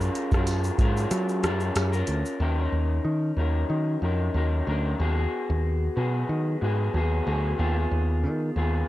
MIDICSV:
0, 0, Header, 1, 4, 480
1, 0, Start_track
1, 0, Key_signature, -6, "minor"
1, 0, Tempo, 647249
1, 1784, Time_signature, 4, 2, 24, 8
1, 6587, End_track
2, 0, Start_track
2, 0, Title_t, "Clean electric guitar"
2, 0, Program_c, 0, 27
2, 0, Note_on_c, 0, 56, 69
2, 0, Note_on_c, 0, 61, 70
2, 0, Note_on_c, 0, 65, 68
2, 0, Note_on_c, 0, 70, 77
2, 233, Note_off_c, 0, 70, 0
2, 236, Note_off_c, 0, 65, 0
2, 241, Note_off_c, 0, 56, 0
2, 242, Note_off_c, 0, 61, 0
2, 242, Note_on_c, 0, 70, 73
2, 245, Note_on_c, 0, 65, 71
2, 251, Note_on_c, 0, 56, 67
2, 251, Note_on_c, 0, 61, 64
2, 255, Note_on_c, 0, 54, 60
2, 579, Note_off_c, 0, 54, 0
2, 584, Note_off_c, 0, 56, 0
2, 587, Note_off_c, 0, 61, 0
2, 587, Note_off_c, 0, 70, 0
2, 588, Note_on_c, 0, 54, 81
2, 589, Note_off_c, 0, 65, 0
2, 593, Note_on_c, 0, 56, 84
2, 596, Note_on_c, 0, 61, 74
2, 600, Note_on_c, 0, 65, 88
2, 603, Note_on_c, 0, 70, 75
2, 1050, Note_off_c, 0, 56, 0
2, 1059, Note_on_c, 0, 56, 65
2, 1062, Note_off_c, 0, 65, 0
2, 1063, Note_off_c, 0, 61, 0
2, 1066, Note_on_c, 0, 61, 71
2, 1070, Note_on_c, 0, 65, 72
2, 1074, Note_off_c, 0, 70, 0
2, 1077, Note_on_c, 0, 70, 77
2, 1081, Note_off_c, 0, 54, 0
2, 1417, Note_off_c, 0, 70, 0
2, 1426, Note_on_c, 0, 70, 67
2, 1429, Note_off_c, 0, 65, 0
2, 1433, Note_off_c, 0, 56, 0
2, 1436, Note_off_c, 0, 61, 0
2, 1438, Note_on_c, 0, 65, 53
2, 1447, Note_on_c, 0, 61, 51
2, 1779, Note_off_c, 0, 70, 0
2, 1781, Note_off_c, 0, 61, 0
2, 1782, Note_on_c, 0, 51, 72
2, 1785, Note_off_c, 0, 65, 0
2, 1789, Note_on_c, 0, 61, 74
2, 1790, Note_on_c, 0, 54, 62
2, 1792, Note_on_c, 0, 63, 74
2, 1796, Note_on_c, 0, 70, 76
2, 1906, Note_off_c, 0, 70, 0
2, 1915, Note_off_c, 0, 51, 0
2, 1915, Note_on_c, 0, 70, 55
2, 1917, Note_off_c, 0, 63, 0
2, 1918, Note_off_c, 0, 61, 0
2, 1919, Note_off_c, 0, 54, 0
2, 1926, Note_on_c, 0, 63, 51
2, 1934, Note_on_c, 0, 61, 44
2, 2498, Note_off_c, 0, 61, 0
2, 2501, Note_on_c, 0, 54, 47
2, 2503, Note_off_c, 0, 70, 0
2, 2507, Note_on_c, 0, 61, 51
2, 2511, Note_off_c, 0, 63, 0
2, 2514, Note_on_c, 0, 63, 61
2, 2521, Note_on_c, 0, 70, 60
2, 2979, Note_off_c, 0, 61, 0
2, 2988, Note_off_c, 0, 70, 0
2, 2988, Note_on_c, 0, 61, 55
2, 2989, Note_off_c, 0, 63, 0
2, 2992, Note_on_c, 0, 63, 56
2, 2997, Note_on_c, 0, 70, 66
2, 3217, Note_off_c, 0, 54, 0
2, 3219, Note_off_c, 0, 61, 0
2, 3220, Note_on_c, 0, 54, 52
2, 3222, Note_off_c, 0, 63, 0
2, 3228, Note_on_c, 0, 61, 51
2, 3231, Note_off_c, 0, 70, 0
2, 3231, Note_on_c, 0, 63, 58
2, 3240, Note_on_c, 0, 70, 59
2, 3452, Note_off_c, 0, 54, 0
2, 3456, Note_off_c, 0, 61, 0
2, 3461, Note_on_c, 0, 54, 54
2, 3463, Note_off_c, 0, 63, 0
2, 3465, Note_on_c, 0, 61, 59
2, 3468, Note_off_c, 0, 70, 0
2, 3472, Note_on_c, 0, 63, 56
2, 3477, Note_on_c, 0, 70, 69
2, 3695, Note_off_c, 0, 54, 0
2, 3703, Note_on_c, 0, 51, 69
2, 3704, Note_on_c, 0, 54, 65
2, 3705, Note_off_c, 0, 61, 0
2, 3708, Note_off_c, 0, 63, 0
2, 3710, Note_on_c, 0, 59, 66
2, 3711, Note_off_c, 0, 70, 0
2, 3714, Note_on_c, 0, 66, 66
2, 3717, Note_on_c, 0, 68, 83
2, 3822, Note_off_c, 0, 68, 0
2, 3831, Note_off_c, 0, 66, 0
2, 3831, Note_on_c, 0, 68, 54
2, 3836, Note_off_c, 0, 51, 0
2, 3837, Note_off_c, 0, 54, 0
2, 3840, Note_off_c, 0, 59, 0
2, 3840, Note_on_c, 0, 66, 44
2, 3850, Note_on_c, 0, 59, 39
2, 4420, Note_on_c, 0, 54, 52
2, 4423, Note_off_c, 0, 59, 0
2, 4423, Note_off_c, 0, 66, 0
2, 4426, Note_on_c, 0, 59, 52
2, 4432, Note_on_c, 0, 66, 59
2, 4434, Note_off_c, 0, 68, 0
2, 4437, Note_on_c, 0, 68, 55
2, 4896, Note_off_c, 0, 54, 0
2, 4905, Note_on_c, 0, 54, 60
2, 4908, Note_off_c, 0, 59, 0
2, 4910, Note_off_c, 0, 66, 0
2, 4911, Note_on_c, 0, 59, 58
2, 4921, Note_on_c, 0, 66, 62
2, 4922, Note_off_c, 0, 68, 0
2, 4925, Note_on_c, 0, 68, 68
2, 5136, Note_off_c, 0, 54, 0
2, 5144, Note_off_c, 0, 59, 0
2, 5145, Note_on_c, 0, 54, 54
2, 5149, Note_off_c, 0, 66, 0
2, 5153, Note_on_c, 0, 59, 58
2, 5157, Note_off_c, 0, 68, 0
2, 5158, Note_on_c, 0, 66, 62
2, 5166, Note_on_c, 0, 68, 68
2, 5373, Note_off_c, 0, 54, 0
2, 5382, Note_off_c, 0, 59, 0
2, 5382, Note_on_c, 0, 54, 60
2, 5385, Note_off_c, 0, 66, 0
2, 5391, Note_on_c, 0, 59, 65
2, 5392, Note_off_c, 0, 68, 0
2, 5394, Note_on_c, 0, 66, 62
2, 5401, Note_on_c, 0, 68, 70
2, 5619, Note_off_c, 0, 59, 0
2, 5619, Note_on_c, 0, 51, 74
2, 5623, Note_off_c, 0, 54, 0
2, 5624, Note_off_c, 0, 68, 0
2, 5626, Note_off_c, 0, 66, 0
2, 5626, Note_on_c, 0, 56, 78
2, 5627, Note_on_c, 0, 59, 76
2, 5629, Note_on_c, 0, 65, 86
2, 5633, Note_on_c, 0, 68, 78
2, 5747, Note_off_c, 0, 68, 0
2, 5756, Note_off_c, 0, 51, 0
2, 5756, Note_on_c, 0, 68, 57
2, 5759, Note_off_c, 0, 56, 0
2, 5760, Note_off_c, 0, 59, 0
2, 5761, Note_off_c, 0, 65, 0
2, 5769, Note_on_c, 0, 65, 47
2, 5774, Note_on_c, 0, 59, 43
2, 6349, Note_off_c, 0, 59, 0
2, 6349, Note_on_c, 0, 56, 54
2, 6357, Note_off_c, 0, 65, 0
2, 6358, Note_on_c, 0, 59, 55
2, 6360, Note_on_c, 0, 65, 61
2, 6362, Note_off_c, 0, 68, 0
2, 6365, Note_on_c, 0, 68, 60
2, 6587, Note_off_c, 0, 56, 0
2, 6587, Note_off_c, 0, 59, 0
2, 6587, Note_off_c, 0, 65, 0
2, 6587, Note_off_c, 0, 68, 0
2, 6587, End_track
3, 0, Start_track
3, 0, Title_t, "Picked electric bass"
3, 0, Program_c, 1, 34
3, 236, Note_on_c, 1, 42, 92
3, 515, Note_off_c, 1, 42, 0
3, 583, Note_on_c, 1, 44, 83
3, 775, Note_off_c, 1, 44, 0
3, 824, Note_on_c, 1, 54, 110
3, 1063, Note_on_c, 1, 42, 84
3, 1074, Note_off_c, 1, 54, 0
3, 1255, Note_off_c, 1, 42, 0
3, 1303, Note_on_c, 1, 42, 90
3, 1495, Note_off_c, 1, 42, 0
3, 1540, Note_on_c, 1, 38, 81
3, 1647, Note_off_c, 1, 38, 0
3, 1779, Note_on_c, 1, 39, 96
3, 1973, Note_off_c, 1, 39, 0
3, 2018, Note_on_c, 1, 39, 78
3, 2212, Note_off_c, 1, 39, 0
3, 2259, Note_on_c, 1, 51, 76
3, 2453, Note_off_c, 1, 51, 0
3, 2496, Note_on_c, 1, 39, 78
3, 2691, Note_off_c, 1, 39, 0
3, 2741, Note_on_c, 1, 51, 81
3, 2934, Note_off_c, 1, 51, 0
3, 2980, Note_on_c, 1, 41, 74
3, 3174, Note_off_c, 1, 41, 0
3, 3221, Note_on_c, 1, 39, 81
3, 3414, Note_off_c, 1, 39, 0
3, 3464, Note_on_c, 1, 38, 84
3, 3657, Note_off_c, 1, 38, 0
3, 3705, Note_on_c, 1, 39, 97
3, 3897, Note_off_c, 1, 39, 0
3, 4078, Note_on_c, 1, 39, 91
3, 4356, Note_off_c, 1, 39, 0
3, 4426, Note_on_c, 1, 47, 84
3, 4618, Note_off_c, 1, 47, 0
3, 4665, Note_on_c, 1, 51, 74
3, 4858, Note_off_c, 1, 51, 0
3, 4908, Note_on_c, 1, 44, 62
3, 5100, Note_off_c, 1, 44, 0
3, 5146, Note_on_c, 1, 39, 74
3, 5339, Note_off_c, 1, 39, 0
3, 5389, Note_on_c, 1, 38, 92
3, 5581, Note_off_c, 1, 38, 0
3, 5630, Note_on_c, 1, 39, 98
3, 5821, Note_off_c, 1, 39, 0
3, 5868, Note_on_c, 1, 39, 86
3, 6107, Note_on_c, 1, 51, 79
3, 6118, Note_off_c, 1, 39, 0
3, 6300, Note_off_c, 1, 51, 0
3, 6347, Note_on_c, 1, 39, 80
3, 6540, Note_off_c, 1, 39, 0
3, 6587, End_track
4, 0, Start_track
4, 0, Title_t, "Drums"
4, 6, Note_on_c, 9, 82, 49
4, 81, Note_off_c, 9, 82, 0
4, 113, Note_on_c, 9, 42, 58
4, 113, Note_on_c, 9, 82, 54
4, 187, Note_off_c, 9, 42, 0
4, 187, Note_off_c, 9, 82, 0
4, 236, Note_on_c, 9, 36, 97
4, 236, Note_on_c, 9, 82, 44
4, 254, Note_on_c, 9, 37, 93
4, 310, Note_off_c, 9, 36, 0
4, 311, Note_off_c, 9, 82, 0
4, 329, Note_off_c, 9, 37, 0
4, 347, Note_on_c, 9, 54, 77
4, 348, Note_on_c, 9, 42, 82
4, 348, Note_on_c, 9, 82, 83
4, 422, Note_off_c, 9, 42, 0
4, 422, Note_off_c, 9, 54, 0
4, 422, Note_off_c, 9, 82, 0
4, 475, Note_on_c, 9, 82, 58
4, 549, Note_off_c, 9, 82, 0
4, 582, Note_on_c, 9, 36, 100
4, 585, Note_on_c, 9, 42, 58
4, 585, Note_on_c, 9, 82, 56
4, 656, Note_off_c, 9, 36, 0
4, 659, Note_off_c, 9, 42, 0
4, 659, Note_off_c, 9, 82, 0
4, 720, Note_on_c, 9, 82, 53
4, 794, Note_off_c, 9, 82, 0
4, 823, Note_on_c, 9, 42, 84
4, 823, Note_on_c, 9, 82, 86
4, 898, Note_off_c, 9, 42, 0
4, 898, Note_off_c, 9, 82, 0
4, 956, Note_on_c, 9, 82, 56
4, 1030, Note_off_c, 9, 82, 0
4, 1065, Note_on_c, 9, 42, 59
4, 1065, Note_on_c, 9, 82, 62
4, 1068, Note_on_c, 9, 37, 103
4, 1139, Note_off_c, 9, 42, 0
4, 1139, Note_off_c, 9, 82, 0
4, 1142, Note_off_c, 9, 37, 0
4, 1189, Note_on_c, 9, 82, 47
4, 1263, Note_off_c, 9, 82, 0
4, 1302, Note_on_c, 9, 42, 75
4, 1302, Note_on_c, 9, 82, 76
4, 1309, Note_on_c, 9, 37, 98
4, 1311, Note_on_c, 9, 54, 75
4, 1376, Note_off_c, 9, 42, 0
4, 1376, Note_off_c, 9, 82, 0
4, 1383, Note_off_c, 9, 37, 0
4, 1385, Note_off_c, 9, 54, 0
4, 1433, Note_on_c, 9, 82, 56
4, 1507, Note_off_c, 9, 82, 0
4, 1535, Note_on_c, 9, 42, 55
4, 1535, Note_on_c, 9, 82, 61
4, 1610, Note_off_c, 9, 42, 0
4, 1610, Note_off_c, 9, 82, 0
4, 1673, Note_on_c, 9, 82, 64
4, 1748, Note_off_c, 9, 82, 0
4, 6587, End_track
0, 0, End_of_file